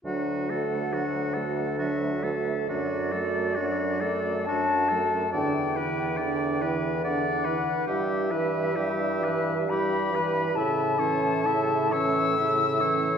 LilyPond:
<<
  \new Staff \with { instrumentName = "Flute" } { \time 3/4 \key d \major \tempo 4 = 69 fis''2 e''4 | d''2 a''4 | g''4. r8 fis''4 | e''2 b''4 |
a''4. e'''4. | }
  \new Staff \with { instrumentName = "Oboe" } { \time 3/4 \key d \major fis'8 a'8 fis'8 a'8 fis'8 a'8 | fis'8 a'8 fis'8 a'8 fis'8 a'8 | d''8 b'8 d''8 b'8 d''8 b'8 | g'8 b'8 g'8 b'8 g'8 b'8 |
e''8 cis''8 e''8 cis''8 e''8 cis''8 | }
  \new Staff \with { instrumentName = "Clarinet" } { \time 3/4 \key d \major d'8 fis'8 d'8 fis'8 d'8 fis'8 | d'8 fis'8 d'8 fis'8 d'8 fis'8 | d'8 e'8 d'8 e'8 d'8 e'8 | e'8 g'8 e'8 g'8 e'8 g'8 |
e'8 cis'8 e'8 cis'8 e'8 cis'8 | }
  \new Staff \with { instrumentName = "French horn" } { \clef bass \time 3/4 \key d \major fis8 a8 fis8 a8 fis8 a8 | fis8 a8 fis8 a8 fis8 a8 | d8 e8 d8 e8 d8 e8 | g8 e8 g8 e8 g8 e8 |
cis8 e8 cis8 e8 cis8 e8 | }
  \new Staff \with { instrumentName = "Bassoon" } { \clef bass \time 3/4 \key d \major d,2. | fis,2. | e,2~ e,8 r8 | g,2. |
a,2. | }
>>